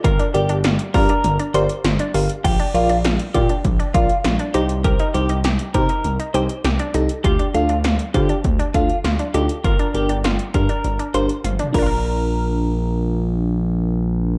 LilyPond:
<<
  \new Staff \with { instrumentName = "Clean electric guitar" } { \time 4/4 \key bes \major \tempo 4 = 100 bes'8 g'8 r8 bes'8. r16 c''16 r4 r16 | g'8 f'8 r8 g'8 r8 f'8 r8 g'16 r16 | bes'8 g'8 r8 bes'8. r16 c''16 r4 r16 | g'8 f'8 r8 g'8 r8 f'8 r8 g'16 r16 |
bes'8 g'8 r8 bes'8. r16 c''16 r8. bes'8~ | bes'2. r4 | }
  \new Staff \with { instrumentName = "FM electric piano" } { \time 4/4 \key bes \major r8 <g' bes' d''>16 r8. <g' bes' d''>16 r8. <g' bes' d''>16 r8. <g' bes' f''>16 r16 | r8 <f' bes' d''>16 r8. <f' bes' d''>16 r8. <f' bes' d''>16 r8. <ees' g' c''>8~ | <ees' g' c''>8 <ees' g' c''>16 r8. <ees' g' c''>16 r8. <ees' g' c''>16 r8. <ees' g' a'>16 r16 | r8 <d' f' a'>16 r8. <d' f' c''>16 r8. <d' f' a'>16 r8. <d' f' a'>16 r16 |
r8 <d' g' bes'>16 r8. <d' g' bes'>16 r8. <d' g' bes'>16 r8. <d' f' bes'>8~ | <d' f' bes'>1 | }
  \new Staff \with { instrumentName = "Synth arpeggio sound" } { \time 4/4 \key bes \major f'16 d'8 d'16 f'8 f'16 d'8 d'16 f'8 f'16 d'16 f'8 | f'16 d'8 d'16 f'8 f'16 d'8 d'16 f'8 f'16 d'16 ees'8 | g'16 ees'8 ees'16 g'8 g'16 ees'8 ees'16 g'8 g'16 d'16 ees'8 | f'16 d'8 d'16 f'8 f'16 d'8 d'16 f'8 f'16 d'16 ees'8 |
f'16 d'8 d'16 f'8 f'16 d'8 d'16 f'8 f'16 d'16 <bes d' f' bes'>8~ | <bes d' f' bes'>1 | }
  \new Staff \with { instrumentName = "Analog synth bass" } { \clef bass \time 4/4 \key bes \major g,,16 r16 g,,16 g,,16 g,,16 r16 g,16 r16 g,,16 r16 g,,16 r16 g,,16 r16 g,,16 r16 | bes,,16 r16 bes,,16 bes,,16 bes,,16 r16 bes,16 r16 bes,,16 r16 bes,,16 r16 bes,,16 r16 c,8~ | c,16 r16 c,16 c,16 c,16 r16 c16 r16 c,16 r16 c,16 r16 c,16 r16 c,16 r16 | d,16 r16 d,16 d,16 d,16 r16 d16 r16 d,16 r16 d,16 r16 d,16 r16 d,16 r16 |
g,,16 r16 g,,16 g,,16 g,,16 r16 g,16 r16 g,,16 r16 g,,16 r16 g,,16 r16 bes,,8~ | bes,,1 | }
  \new DrumStaff \with { instrumentName = "Drums" } \drummode { \time 4/4 <hh bd>16 hh16 hh16 hh16 <hh sn>16 hh16 <hho bd>16 hh16 hh16 hh16 hh16 hh16 <hh sn>16 hh16 hho16 hh16 | <cymc hh bd>16 hh16 hh16 hh16 <hh sn>16 hh16 <hh bd>16 hh16 <hh bd>16 hh16 <hh bd>16 hh16 <hh sn>16 hh16 hh16 hh16 | <hh bd>16 hh16 hh16 hh16 <hh sn>16 hh16 <hh bd>16 hh16 hh16 hh16 hh16 hh16 <hh sn>16 hh16 hh16 hh16 | <hh bd>16 hh16 hh16 hh16 <hh sn>16 hh16 <hh bd>16 hh16 <hh bd>16 hh16 <hh bd>16 hh16 <hh sn>16 hh16 hh16 hh16 |
<hh bd>16 hh16 hh16 hh16 <hh sn>16 hh16 <hh bd>16 hh16 hh16 hh16 hh16 hh16 <hh tommh>16 <hh toml>16 <cymc bd>8 | r4 r4 r4 r4 | }
>>